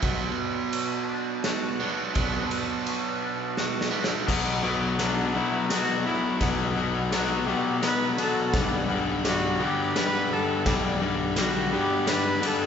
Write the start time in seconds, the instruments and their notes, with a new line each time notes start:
0.01 fingered electric bass B1, overdriven electric guitar B2 F#3 B3, clean electric guitar B2, string section F#4 B4 D5 A5, kick, ride
0.73 clean electric guitar F#3, ride
1.09 clean electric guitar D4
1.44 clean electric guitar F#4, snare, ride
1.80 overdriven electric guitar B2 F#3 B3, clean electric guitar D4
2.14 fingered electric bass B1, overdriven electric guitar B2 F#3 B3, clean electric guitar B2, kick, ride
2.51 ride
2.86 clean electric guitar F#3, ride
3.22 clean electric guitar D4
3.57 clean electric guitar F#4, snare
3.81 snare
3.91 overdriven electric guitar B2 F#3 B3, clean electric guitar D4
4.04 snare
4.27 fingered electric bass B1, overdriven electric guitar B2 F#3 B3, clean electric guitar B2, string section A4 D5 F#5 B5, kick, snare, crash
4.63 overdriven electric guitar B2 F#3 B3, clean electric guitar F#3
4.99 overdriven electric guitar B2 F#3 B3, clean electric guitar D4, cello D4, snare, ride
5.34 overdriven electric guitar B2 F#3 B3, clean electric guitar A3, cello E4
5.70 overdriven electric guitar B2 F#3 B3, clean electric guitar D4, cello F#4, snare, ride
6.05 overdriven electric guitar B2 F#3 B3, cello E4
6.40 fingered electric bass B1, clean electric guitar B2, overdriven electric guitar B2 F#3 B3, kick, snare, ride
6.76 overdriven electric guitar B2 F#3 B3
7.10 overdriven electric guitar B2 F#3 B3, clean electric guitar D4, cello F#4, snare, ride
7.46 overdriven electric guitar B2 F#3 B3, clean electric guitar A3, cello G4
7.82 overdriven electric guitar B2 F#3 B3, clean electric guitar D4, cello B4, snare, ride
8.17 overdriven electric guitar B2 F#3 B3, clean electric guitar F#3, cello A4, ride
8.52 fingered electric bass B1, overdriven electric guitar G2 D3 G3, clean electric guitar B2, string section G3, kick, snare, ride
8.88 overdriven electric guitar G2 D3 G3, clean electric guitar G3
9.24 overdriven electric guitar G2 D3 G3, clean electric guitar D4, cello F#4, snare, ride
9.59 overdriven electric guitar G2 D3 G3, clean electric guitar B3, cello G4
9.95 overdriven electric guitar G2 D3 G3, clean electric guitar D4, cello B4, snare, ride
10.31 overdriven electric guitar G2 D3 G3, clean electric guitar G3, cello A4
10.66 fingered electric bass B1, overdriven electric guitar G2 D3 G3, clean electric guitar B2, string section E5, kick, snare, ride
11.01 overdriven electric guitar G2 D3 G3, clean electric guitar G3
11.36 overdriven electric guitar G2 D3 G3, clean electric guitar D4, cello F#4, snare, ride
11.71 overdriven electric guitar G2 D3 G3, clean electric guitar B3, cello G4
12.07 overdriven electric guitar G2 D3 G3, clean electric guitar D4, cello B4, snare, ride
12.41 overdriven electric guitar G2 D3 G3, clean electric guitar G3, ride
12.46 cello A4